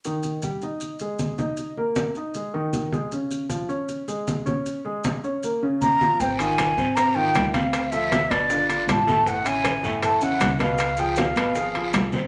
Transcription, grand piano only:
X:1
M:4/4
L:1/8
Q:1/4=156
K:Dblyd
V:1 name="Grand piano"
[E,E]2 [G,G] [Ee]2 [A,A]2 [Ee]- | [Ee] [B,B]2 [Ee] [A,A] [E,E]2 [A,A] | [D,D]2 [F,F] [Dd]2 [A,A]2 [Dd]- | [Dd] [A,A]2 [Dd] [B,B] [D,D]2 [F,F] |
[C,Cc] [E,EF]2 [C,Cc] [C,Cc] [E,EF]2 [C,Cc]- | [C,Cc] [F,F=A]2 [_C,_C_c] [=D,=DF] [D,DF]2 [=A,,=A,A] | [=A,,=A,=A] [^C,^C=E]2 [A,,A,A] [A,,A,A] [C,CE]2 [=B,,=B,=B]- | [=B,,=B,=B] [F,FA]2 [_C,_C_c] [F,FA] [F,FA]2 [=C,=C=c] |]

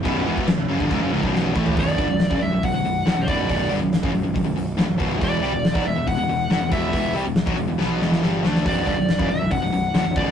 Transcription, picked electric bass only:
X:1
M:4/4
L:1/16
Q:1/4=140
K:Bm
V:1 name="Picked electric bass" clef=bass
B,,,,2 E,,,2 B,,,, B,,,, F,,, G,,, C,,, F,,, C,,, B,,,,3 A,,,2 | B,,,,2 G,,, B,,,,2 F,,, B,,,, B,,,, B,,,, B,,,, B,,,,2 D,,, B,,,, B,,,,2 | B,,,,2 G,,, B,,,,2 F,,, B,,,, B,,,, B,,,, B,,,, B,,,,2 D,,, B,,,, B,,,,2 | E,,,2 =C,, E,,,2 B,,, E,,, E,,, E,,, E,,, E,,,2 G,,, E,,, E,,,2 |
E,,,2 =C,, E,,,2 B,,, E,,, E,,, B,,,2 E,,,2 G,,,2 D,,2 | B,,,,2 G,,, B,,,,2 F,,, B,,,, B,,,, B,,,, B,,,, B,,,,2 D,,, B,,,, B,,,,2 |]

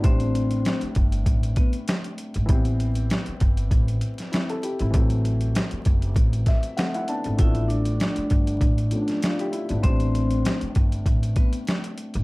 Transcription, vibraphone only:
X:1
M:4/4
L:1/16
Q:"Swing 16ths" 1/4=98
K:C
V:1 name="Vibraphone"
[Cc]4- [Cc] z4 z [B,B] z4 z | z16 | z16 | [Ee]2 [Dd]12- [Dd]2 |
[Cc]4- [Cc] z4 z [B,B] z4 z |]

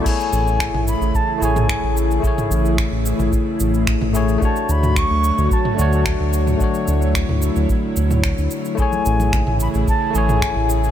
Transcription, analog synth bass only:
X:1
M:4/4
L:1/16
Q:1/4=110
K:A
V:1 name="Analog synth bass" clef=bass
z2 A,,,3 A,,,2 A,,, z2 A,,,3 A,,,3 | z2 A,,,3 A,,,2 A,,, z2 A,,,3 A,,,3 | z2 D,,3 D,,2 D,, z2 D,,3 D,,3 | z2 D,,3 D,,2 D,, z2 D,,3 D,, z2 |
z2 A,,,3 A,,,2 A,,, z2 A,,,3 A,,,3 |]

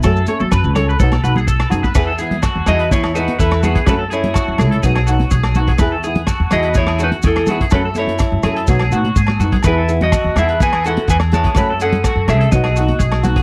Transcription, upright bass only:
X:1
M:4/4
L:1/16
Q:1/4=125
K:E
V:1 name="Upright bass" clef=bass
F,,2 z F, F,, C,,3 B,,,2 B,,,4 F,,2 | E,,4- E,, E,, E,,6 E,,4 | F,,4- F,, F,, C,,2 B,,,4 B,,,4 | E,,4- E,, E,, E,,6 E,,4 |
F,,4- F,, F,, F,,2 B,,,2 A,,2 G,,2 F,,2 | E,,4- E,, E,, E,,6 E,,4 | F,,4- F,, F,, =C,,2 B,,,4 B,,,4 |]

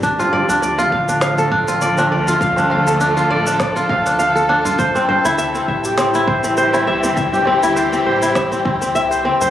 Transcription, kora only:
X:1
M:4/4
L:1/16
Q:"Swing 16ths" 1/4=101
K:Dm
V:1 name="Kora"
D F d D d F f D f A D F d D d F | f D f A D F d D d F f D f A D F | c C c E e C e G C E c C c E e C | e G C E c C c E e C C C e c C c |]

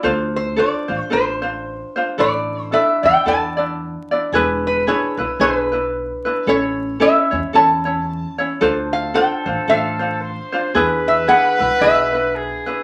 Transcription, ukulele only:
X:1
M:4/4
L:1/8
Q:"Swing" 1/4=112
K:Dm
V:1 name="Ukulele"
[DFAc]2 [DFAc] [DFc] [DFAc] [DFc]2 [DFc] | [DEAd]2 [DEAd] [DEd] [DEAd] [DEd]2 [DEd] | [DE^G=B]2 [DEGB] [DEB] [DEGB] [DEB]2 [DEB] | [^CEA^c]2 [CEAc] [CEc] [CEAc] [CEc]2 [CEc] |
[DFAc]2 [DFAc] [DFc] [DFAc] [DFc]2 [DFc] | [DE^G=B]2 [DEGB] [DEB] [DEGB] [DEB]2 [DEB] |]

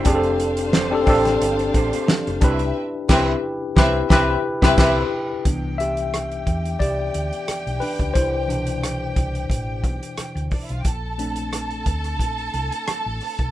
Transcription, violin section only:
X:1
M:4/4
L:1/16
Q:"Swing 16ths" 1/4=89
K:C
V:1 name="Violin section"
[Dcf]12- [Dcf]2 [CBe]2 | z2 [CBe]2 z2 [CBe]2 [CBe]2 z [CBe] [CBe]2 z2 | [Gg]16- | [Gg]12- [Gg]3/2 z/2 [Dd]/2 [Ee]/2 [Ff]/2 [Gg]/2 |
[Aa]16 |]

